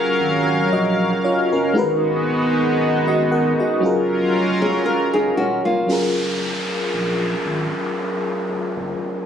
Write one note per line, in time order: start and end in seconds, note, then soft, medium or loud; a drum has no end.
0.00 1.70 F#3 medium
0.00 1.71 F#3 medium
0.00 0.67 C#4 medium
0.00 1.71 C#4 medium
0.00 0.68 F4 medium
0.00 0.69 G#4 medium
0.00 0.69 A#4 medium
0.00 1.71 A#4 medium
0.00 1.71 F5 medium
0.20 0.62 G#1 medium
0.72 1.14 A#1 medium
0.72 1.22 F#4 medium
0.72 1.21 D#5 medium
1.24 1.51 F4 medium
1.24 1.50 C#5 medium
1.52 1.77 F#1 medium
1.52 2.01 C#4 medium
1.52 1.76 A#4 medium
1.73 3.54 G#1 loud
1.73 3.77 G#3 medium
1.73 3.80 G#3 medium
1.73 3.80 B3 medium
1.73 3.78 D#4 medium
1.73 3.80 D#4 medium
1.73 3.80 F#4 medium
1.73 2.26 F#4 medium
1.78 2.27 A#4 medium
1.78 2.28 B4 medium
3.08 3.30 F#4 medium
3.08 3.30 D#5 medium
3.31 3.58 A#4 medium
3.31 3.57 F#5 medium
3.60 4.08 F#4 medium
3.60 4.08 D#5 medium
3.80 4.24 F#1 loud
3.80 5.84 F#3 medium
3.80 5.87 F#3 medium
3.80 5.85 C#4 medium
3.80 5.87 C#4 medium
3.80 5.87 F4 medium
3.80 5.85 F4 medium
3.80 5.87 A#4 medium
3.85 5.86 G#4 medium
3.85 5.87 A#4 medium
4.35 4.76 F1 loud
4.62 4.84 G#4 medium
4.62 4.84 C#5 medium
4.86 5.12 F4 medium
4.86 5.12 A#4 medium
5.13 5.33 F#1 medium
5.13 5.36 D#4 medium
5.13 5.36 G#4 medium
5.37 5.60 D#1 medium
5.37 5.64 C#4 medium
5.37 5.64 F#4 medium
5.65 5.85 F1 medium
5.65 6.14 A#3 medium
5.65 6.14 F4 medium
5.87 6.54 F#1 medium
5.87 9.26 F#3 medium
5.87 9.26 C#4 medium
5.87 9.26 F4 medium
5.87 downlifter medium
5.91 9.26 G#4 medium
5.91 9.26 A#4 medium
6.93 7.35 A#1 medium
7.45 7.67 G#1 loud
8.48 8.59 F#1 soft
8.76 8.95 F#1 medium